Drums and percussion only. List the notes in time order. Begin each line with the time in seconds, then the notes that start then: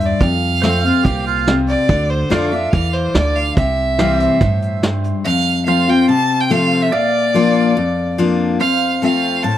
0.00 closed hi-hat
0.21 kick, closed hi-hat
0.63 snare, closed hi-hat
0.84 closed hi-hat
1.05 kick, closed hi-hat
1.26 closed hi-hat
1.47 snare, closed hi-hat
1.68 closed hi-hat
1.89 kick, closed hi-hat
2.31 snare, closed hi-hat
2.52 closed hi-hat
2.73 kick, closed hi-hat
2.94 closed hi-hat
3.15 snare, closed hi-hat
3.36 closed hi-hat
3.56 kick, closed hi-hat
3.99 snare, closed hi-hat
4.20 closed hi-hat
4.41 kick, closed hi-hat
4.62 closed hi-hat
4.83 snare, closed hi-hat
5.04 closed hi-hat